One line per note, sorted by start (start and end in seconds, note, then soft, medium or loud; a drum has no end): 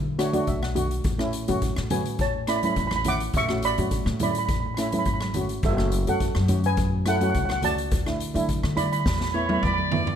0.00 0.44 D3 loud
0.18 0.28 A3 loud
0.18 0.28 D4 medium
0.18 0.28 F#4 loud
0.18 0.33 C#5 medium
0.18 cross-stick medium
0.18 closed hi-hat medium
0.33 0.60 A3 medium
0.33 0.60 D4 medium
0.33 0.60 F#4 loud
0.33 0.47 D5 medium
0.33 closed hi-hat medium
0.33 high conga medium
0.47 1.01 B1 medium
0.47 0.62 E5 medium
0.47 kick medium
0.47 closed hi-hat medium
0.63 1.02 F#5 medium
0.63 cross-stick medium
0.75 1.02 A3 medium
0.75 1.02 D4 medium
0.75 1.02 F#4 loud
0.75 closed hi-hat medium
0.75 low conga medium
0.91 closed hi-hat medium
1.04 1.45 A1 medium
1.04 kick loud
1.04 closed hi-hat medium
1.19 1.36 A3 medium
1.19 1.36 C#4 medium
1.19 1.36 E4 medium
1.19 cross-stick medium
1.33 closed hi-hat medium
1.48 1.75 A2 loud
1.48 1.74 A3 medium
1.48 1.74 C#4 medium
1.48 1.74 F#4 loud
1.48 closed hi-hat medium
1.48 high conga medium
1.48 low conga medium
1.62 kick medium
1.62 closed hi-hat medium
1.76 2.73 A2 loud
1.76 cross-stick medium
1.90 2.26 A3 medium
1.90 2.26 C#4 medium
1.90 2.26 F#4 medium
1.90 2.18 B4 medium
1.90 2.21 G#5 medium
1.90 closed hi-hat medium
1.90 high conga medium
1.90 low conga medium
2.05 closed hi-hat medium
2.19 2.47 C#5 medium
2.19 2.47 A5 medium
2.19 kick loud
2.19 closed hi-hat medium
2.47 2.57 A3 medium
2.47 2.57 C#4 medium
2.47 2.57 E4 medium
2.47 2.56 D5 medium
2.47 2.55 B5 medium
2.47 cross-stick medium
2.47 closed hi-hat medium
2.56 2.64 B5 medium
2.63 2.89 A3 medium
2.63 2.89 C#4 medium
2.63 2.89 E4 medium
2.63 2.71 B5 medium
2.63 closed hi-hat medium
2.63 high conga medium
2.72 2.78 B5 medium
2.72 closed hi-hat medium
2.76 3.30 A1 medium
2.76 2.86 B5 medium
2.76 kick medium
2.87 2.95 B5 medium
2.87 cross-stick medium
2.92 high conga medium
2.96 3.02 B5 medium
3.04 3.31 A3 medium
3.04 3.31 C#4 medium
3.04 3.32 E4 medium
3.04 3.34 F#5 medium
3.04 closed hi-hat medium
3.04 low conga medium
3.08 3.36 D6 loud
3.20 closed hi-hat medium
3.33 3.74 A1 loud
3.33 3.49 E5 medium
3.33 kick loud
3.33 closed hi-hat medium
3.37 3.50 C#6 loud
3.49 3.66 A3 medium
3.49 3.66 C#4 medium
3.49 3.66 F#4 medium
3.49 cross-stick medium
3.62 4.17 D5 medium
3.62 4.22 B5 loud
3.62 closed hi-hat medium
3.78 4.04 A2 loud
3.78 4.04 A3 medium
3.78 4.04 C#4 medium
3.78 4.04 F#4 medium
3.78 closed hi-hat medium
3.78 high conga medium
3.78 low conga medium
3.91 kick medium
3.91 closed hi-hat medium
4.06 5.02 A2 loud
4.06 cross-stick medium
4.19 4.55 A3 medium
4.19 4.55 C#4 medium
4.19 4.55 E4 medium
4.19 4.29 D5 medium
4.19 4.29 B5 medium
4.19 closed hi-hat medium
4.19 high conga medium
4.19 low conga medium
4.31 4.37 B5 medium
4.31 closed hi-hat medium
4.38 4.44 B5 medium
4.46 4.50 B5 medium
4.46 kick loud
4.46 closed hi-hat medium
4.51 4.58 B5 medium
4.60 4.65 B5 medium
4.66 4.73 B5 medium
4.74 4.87 A3 medium
4.74 4.87 C#4 medium
4.74 4.87 E4 medium
4.74 4.81 B5 medium
4.74 cross-stick medium
4.74 closed hi-hat medium
4.82 4.89 B5 medium
4.91 5.19 A3 medium
4.91 5.19 C#4 medium
4.91 5.19 E4 medium
4.91 4.97 B5 medium
4.91 closed hi-hat medium
4.91 high conga medium
4.99 5.04 B5 medium
5.05 5.59 G#1 medium
5.05 5.12 B5 medium
5.05 kick medium
5.05 closed hi-hat medium
5.14 5.20 B5 medium
5.20 5.27 B5 medium
5.20 cross-stick medium
5.20 high conga medium
5.34 5.61 A3 medium
5.34 5.61 C#4 medium
5.34 5.61 F#4 medium
5.34 closed hi-hat medium
5.34 low conga medium
5.49 closed hi-hat medium
5.63 6.03 F#1 loud
5.63 6.05 A4 medium
5.63 6.09 E5 medium
5.63 kick loud
5.63 closed hi-hat medium
5.78 5.94 A3 medium
5.78 5.95 C#4 medium
5.78 5.95 F#4 medium
5.78 cross-stick medium
5.92 closed hi-hat medium
6.07 6.33 F#2 medium
6.07 6.32 A3 medium
6.07 6.33 C#4 medium
6.07 6.33 F#4 medium
6.07 6.61 A4 medium
6.07 6.61 F#5 medium
6.07 closed hi-hat medium
6.07 high conga medium
6.07 low conga medium
6.20 kick medium
6.20 closed hi-hat medium
6.35 7.31 F#2 loud
6.35 cross-stick medium
6.48 6.83 A3 medium
6.48 6.83 C#4 medium
6.48 6.84 F#4 medium
6.48 closed hi-hat medium
6.48 high conga medium
6.48 low conga medium
6.64 7.04 B4 medium
6.64 7.04 G#5 loud
6.64 closed hi-hat medium
6.77 kick loud
6.77 closed hi-hat medium
7.06 7.15 A3 medium
7.06 7.15 C#4 medium
7.06 7.15 E4 medium
7.06 7.15 A4 medium
7.06 7.14 F#5 loud
7.06 cross-stick medium
7.06 closed hi-hat medium
7.16 7.22 F#5 medium
7.21 7.47 A3 medium
7.21 7.47 C#4 medium
7.21 7.47 F#4 medium
7.21 7.29 F#5 medium
7.21 closed hi-hat medium
7.21 high conga medium
7.30 7.36 F#5 medium
7.34 7.88 C#2 medium
7.34 kick medium
7.34 closed hi-hat medium
7.39 7.44 F#5 medium
7.45 7.51 F#5 medium
7.45 high conga medium
7.50 7.59 F#5 medium
7.50 cross-stick medium
7.62 7.89 A3 medium
7.62 7.89 C#4 medium
7.62 7.89 F#4 medium
7.62 8.46 D5 medium
7.62 8.45 A5 loud
7.62 closed hi-hat medium
7.62 low conga medium
7.78 closed hi-hat medium
7.91 8.32 D2 medium
7.91 kick loud
7.91 closed hi-hat medium
8.06 8.23 A3 medium
8.06 8.23 D4 medium
8.06 8.23 E4 medium
8.06 cross-stick medium
8.20 closed hi-hat medium
8.34 8.61 D3 medium
8.34 8.60 A3 medium
8.34 8.61 D4 medium
8.34 8.61 E4 loud
8.34 closed hi-hat medium
8.34 high conga medium
8.49 kick medium
8.49 closed hi-hat medium
8.63 9.02 D3 loud
8.63 cross-stick medium
8.75 9.05 A3 medium
8.75 9.05 D4 medium
8.75 9.05 E4 medium
8.75 8.85 D5 medium
8.75 8.84 B5 loud
8.75 closed hi-hat medium
8.75 high conga medium
8.75 low conga medium
8.86 8.91 B5 medium
8.92 8.99 B5 medium
8.92 closed hi-hat medium
9.00 9.07 B5 medium
9.06 9.59 E2 loud
9.06 9.15 B5 medium
9.06 kick loud
9.06 snare medium
9.06 high conga medium
9.16 9.23 B5 medium
9.21 9.30 B5 medium
9.21 snare medium
9.31 9.43 A3 medium
9.31 9.43 B3 medium
9.31 9.44 E4 medium
9.31 9.60 C#5 medium
9.31 9.36 B5 medium
9.37 9.45 B5 medium
9.46 9.75 A3 medium
9.46 9.75 B3 medium
9.46 9.75 E4 medium
9.46 9.52 B5 medium
9.46 high tom medium
9.46 high conga medium
9.53 9.58 B5 medium
9.59 10.16 D5 loud
9.59 9.66 B5 medium
9.59 kick medium
9.59 mid tom medium
9.63 10.16 E2 medium
9.63 9.73 B5 medium
9.74 9.81 B5 medium
9.78 high conga medium
9.91 10.16 A3 medium
9.91 10.16 B3 medium
9.91 10.16 E4 medium
9.91 floor tom medium
9.91 low conga medium
10.07 floor tom loud